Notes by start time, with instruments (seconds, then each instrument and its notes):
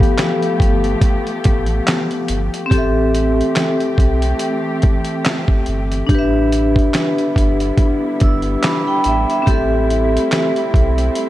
Already playing: string section F3 A3 B3 G4, vibraphone B3 G4 A4 F5
0.00 kick, closed hi-hat
0.18 snare, clap, closed hi-hat
0.42 closed hi-hat
0.60 sub bass G1, kick, closed hi-hat
0.84 closed hi-hat
1.01 kick, closed hi-hat
1.27 closed hi-hat
1.44 sub bass A1, kick, closed hi-hat
1.66 closed hi-hat
1.87 snare, clap, closed hi-hat
2.11 closed hi-hat
2.28 sub bass G1, closed hi-hat
2.54 closed hi-hat
2.66 vibraphone C4
2.70 sub bass A1, string section E3 A3 C4 G4, vibraphone G4 A4, kick, closed hi-hat
2.78 vibraphone E5
3.15 closed hi-hat
3.41 closed hi-hat
3.56 snare, clap, closed hi-hat
3.80 closed hi-hat
3.98 sub bass B1, kick, closed hi-hat
4.22 closed hi-hat
4.39 closed hi-hat
4.82 kick, closed hi-hat
5.05 closed hi-hat
5.25 snare, clap, closed hi-hat
5.48 kick
5.66 sub bass G1, closed hi-hat
5.92 closed hi-hat
6.07 sub bass A1, string section D3 G3 B3 E4, vibraphone D4 G4, kick, closed hi-hat
6.15 vibraphone B4 E5
6.52 closed hi-hat
6.76 kick, closed hi-hat
6.94 snare, clap, closed hi-hat
7.18 closed hi-hat
7.36 sub bass G1, kick, closed hi-hat
7.60 closed hi-hat
7.78 kick, closed hi-hat
8.20 sub bass G1, vibraphone E6, kick, closed hi-hat
8.42 closed hi-hat
8.62 vibraphone B5 D6, snare, clap, closed hi-hat
8.87 vibraphone G5 B5
9.04 sub bass A1, vibraphone E5 G5, closed hi-hat
9.30 vibraphone E5, closed hi-hat
9.42 vibraphone C4
9.46 sub bass A1, string section A3 C4, vibraphone G4, kick, closed hi-hat
9.50 vibraphone A4 E5
9.90 closed hi-hat
10.17 closed hi-hat
10.32 snare, clap, closed hi-hat
10.56 closed hi-hat
10.74 sub bass B1, kick, closed hi-hat
10.98 closed hi-hat
11.15 closed hi-hat